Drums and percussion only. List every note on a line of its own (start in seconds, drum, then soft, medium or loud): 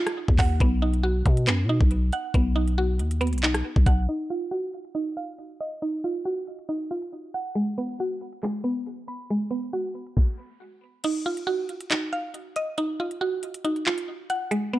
0.07 cross-stick loud
0.07 closed hi-hat medium
0.28 kick loud
0.39 kick loud
0.39 clap medium
0.39 open hi-hat medium
0.60 kick loud
0.60 closed hi-hat medium
0.94 closed hi-hat medium
1.26 kick loud
1.26 closed hi-hat medium
1.37 closed hi-hat medium
1.47 clap loud
1.47 closed hi-hat medium
1.81 kick loud
1.91 closed hi-hat medium
2.13 closed hi-hat medium
2.34 kick loud
2.34 closed hi-hat medium
2.68 closed hi-hat medium
2.99 closed hi-hat medium
3.11 closed hi-hat medium
3.21 closed hi-hat medium
3.27 closed hi-hat medium
3.33 closed hi-hat medium
3.38 closed hi-hat medium
3.43 clap loud
3.54 cross-stick loud
3.54 closed hi-hat medium
3.76 kick loud
3.86 kick loud
3.86 closed hi-hat medium
4.08 closed hi-hat medium
4.41 closed hi-hat medium
4.73 closed hi-hat medium
4.85 closed hi-hat medium
4.95 closed hi-hat medium
5.38 closed hi-hat medium
5.60 closed hi-hat medium
5.82 closed hi-hat medium
6.15 closed hi-hat medium
6.47 closed hi-hat medium
6.59 closed hi-hat medium
6.69 closed hi-hat medium
6.80 closed hi-hat soft
7.02 closed hi-hat medium
7.34 closed hi-hat medium
7.56 closed hi-hat medium
7.89 closed hi-hat medium
8.21 closed hi-hat medium
8.33 closed hi-hat medium
8.43 clap loud
8.43 closed hi-hat medium
8.86 closed hi-hat medium
9.08 closed hi-hat medium
9.30 closed hi-hat medium
9.63 closed hi-hat medium
9.95 closed hi-hat medium
10.07 closed hi-hat medium
10.17 kick loud
10.17 snare medium
11.04 closed hi-hat medium
11.04 crash medium
11.37 closed hi-hat medium
11.69 closed hi-hat medium
11.81 closed hi-hat medium
11.91 clap loud
11.91 closed hi-hat medium
12.34 closed hi-hat medium
12.56 closed hi-hat medium
12.78 closed hi-hat medium
13.11 closed hi-hat medium
13.43 closed hi-hat medium
13.54 closed hi-hat medium
13.65 closed hi-hat medium
13.76 closed hi-hat soft
13.86 clap loud
13.98 closed hi-hat medium
14.30 closed hi-hat medium
14.51 closed hi-hat medium